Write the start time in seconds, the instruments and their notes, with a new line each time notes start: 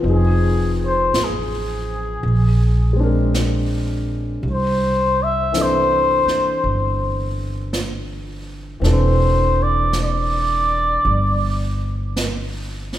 Already playing: grand piano B4
0.00 upright bass F1, grand piano F3 C4, brush sweep
0.05 grand piano D#4 G#4
0.14 muted trumpet G#4
0.85 muted trumpet C5
1.13 upright bass A1, brush sweep, snare, hi-hat pedal
1.24 muted trumpet G#4
2.23 upright bass A#1, brush sweep
2.93 grand piano G#3 C4
3.00 grand piano D4 A#4
3.34 brush sweep, snare, hi-hat pedal
4.43 upright bass C2, brush sweep
4.52 muted trumpet C5
5.23 muted trumpet E5
5.52 grand piano E3 C4 D4, brush sweep, snare, hi-hat pedal
5.57 grand piano A4
5.62 muted trumpet C5
6.26 muted upright bass stroke, snare
6.64 upright bass G1, brush sweep
7.73 brush sweep, snare, hi-hat pedal
8.80 upright bass E1, grand piano E3 C4 D4, brush sweep, snare
8.85 grand piano A4
8.93 muted trumpet C5
9.63 muted trumpet D5
9.93 brush sweep, snare, hi-hat pedal
10.04 muted trumpet D5
11.05 upright bass G1, brush sweep
12.16 brush sweep, snare, hi-hat pedal
12.93 snare